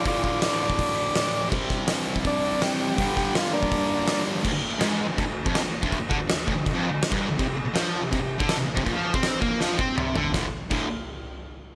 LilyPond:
<<
  \new Staff \with { instrumentName = "Transistor combo organ" } { \time 4/4 \key d \minor \tempo 4 = 163 <f' d''>8 <f' d''>8 d''2. | r2 d'4 g'4 | g'8 g'8 f'8 <bes d'>2 r8 | r1 |
r1 | r1 | r1 | r1 | }
  \new Staff \with { instrumentName = "Distorted electric guitar" } { \clef bass \time 4/4 \key d \minor <d, a, d>1 | <c g c'>1 | <g, d g>1 | d,16 d,16 r8 gis,8. d,16 d,16 d,8 f,8 d,16 r16 d,16~ |
d,16 r16 d16 d,16 d,8 d,16 d,16 d,16 f,8 d,8 g,8 d,16 | c16 c16 r8 f8. c16 c16 c8 d8 c16 r16 c16 | bes,16 f8 c'8. bes8 f8 c'8 c8 d8 | <d, a, d>16 r8. <d, a, d>8 r2 r8 | }
  \new DrumStaff \with { instrumentName = "Drums" } \drummode { \time 4/4 <hho bd>8 bd8 <hho sn>16 sn8 bd16 <hho bd>4 <hho sn>4 | <cymc bd>8 <bd sn>8 <hho sn>8. bd16 <hho bd>4 <hho sn>4 | <hho bd>8 <bd sn>8 <hho sn>16 sn8 bd16 <hho bd>4 <hho sn>4 | <cymc bd>4 <cymc sn>4 <cymc bd>8. bd16 <cymc sn>8. bd16 |
<cymc bd>8 bd8 <cymc sn>8 bd8 <cymc bd>4 <cymc sn>16 bd8. | <cymc bd>4 <cymc sn>4 <cymc bd>8. bd16 <cymc sn>8. bd16 | <cymc bd>8. bd16 <cymc sn>8 bd8 sn8 bd8 toml8 tomfh8 | <bd sn>4 <cymc bd>4 r4 r4 | }
>>